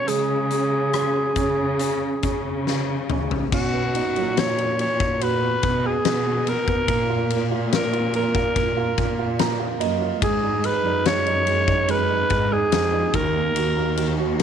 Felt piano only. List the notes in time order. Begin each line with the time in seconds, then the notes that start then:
Already playing: C#4
0.07 G#3
0.51 C#4
0.94 C#4
1.37 C#4
1.80 C#4
2.23 C#4
2.67 C#4
3.10 C#4
3.52 C#4
3.74 B4
3.95 D#4
4.17 F#3
5.21 F#4
5.42 B3
5.63 B3
5.84 B3
6.05 B3
6.26 B3
6.47 B3
6.68 B3
6.88 A#3
7.10 F4
7.31 A#3
7.51 F4
7.72 A#3
7.93 F4
8.14 A#3
8.35 F4
8.56 A#3
8.77 F4
8.98 A#3
9.19 F4
9.39 A#3 A#5
9.60 F4
9.80 A#3 D#5
10.01 F4
10.22 G#3
10.43 D#4
10.64 G#3
10.85 D#4
11.06 G#3
11.27 D#4
11.47 G#3
11.68 D#4
11.88 G#3
12.10 D#4
12.30 G#3
12.52 D#4
12.73 G#3
12.93 D#4
13.14 D#3
13.34 A#3
13.56 F#4
13.77 A#3
13.97 D#3
14.18 F#4